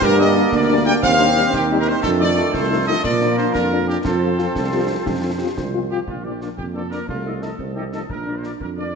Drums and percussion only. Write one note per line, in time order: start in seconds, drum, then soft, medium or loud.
0.01 concert bass drum loud
0.01 snare medium
0.35 snare medium
0.52 concert bass drum medium
0.52 snare medium
1.03 concert bass drum medium
1.03 snare medium
1.19 snare medium
1.36 snare medium
1.53 concert bass drum medium
1.53 snare medium
2.03 concert bass drum medium
2.03 snare medium
2.03 crash soft
2.37 snare medium
2.54 concert bass drum medium
2.54 snare medium
3.04 concert bass drum medium
3.04 snare medium
3.21 snare medium
3.38 snare soft
3.55 concert bass drum medium
3.55 snare medium
4.05 concert bass drum medium
4.05 snare medium
4.39 snare medium
4.56 concert bass drum medium
4.56 snare medium
5.06 concert bass drum loud
5.06 snare medium
5.58 concert bass drum medium
5.58 snare medium
6.07 concert bass drum medium
6.41 snare soft
6.58 concert bass drum medium
6.92 snare soft
7.09 concert bass drum medium
7.42 snare soft
7.59 concert bass drum medium
7.93 snare soft
8.10 concert bass drum medium
8.44 snare soft
8.61 concert bass drum medium